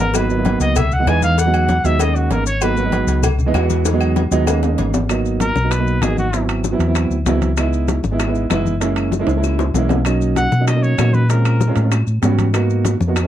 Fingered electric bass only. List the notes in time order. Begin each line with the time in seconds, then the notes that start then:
Already playing: G#1
0.60 C#2
1.06 E2
1.84 D#2
2.30 G#1
3.07 C#2
3.54 E2
4.31 D#2
4.78 G#1
5.55 B1
6.01 G#1
6.79 E2
7.10 D2
7.25 C#2
8.03 G#1
8.50 F#1
9.27 C#2
9.74 B1
10.52 B2
10.99 A#2
11.76 A2
12.07 A2
12.22 G#2
13.00 F2